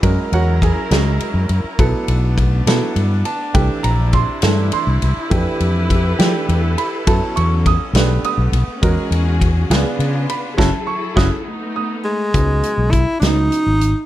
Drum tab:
RD |xxxxxx|xxxxxx|xxxxxx|xxxxxx|
HH |------|------|------|------|
SD |---o--|---o--|---o--|---o--|
BD |o-o---|o-o---|o-o---|o-o---|

RD |xxxxxx|xxxxxx|------|------|
HH |------|------|------|xxxxxx|
SD |---o--|---o--|o-o---|---o--|
BD |o-o---|o-o---|o-o---|o-o---|